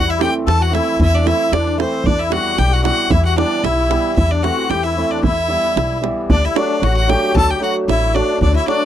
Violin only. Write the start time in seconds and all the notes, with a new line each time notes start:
Already playing: F#5
0.10 E5
0.22 G5
0.47 A5
0.62 F#5
0.74 E5
1.01 E5
1.15 D5
1.26 E5
1.52 D5
1.80 C5
2.06 D5
2.19 E5
2.32 F#5
2.58 G5
2.73 F#5
2.84 F#5
3.11 E5
3.25 F#5
3.38 D5
3.64 E5
4.16 E5
4.31 D5
4.43 F#5
4.69 G5
4.83 E5
5.11 D5
5.23 E5
6.31 D5
6.45 E5
6.56 D5
6.84 F#5
6.97 F#5
7.09 G5
7.36 A5
7.50 G5
7.63 F#5
7.89 E5
8.15 D5
8.42 D5
8.56 E5
8.68 D5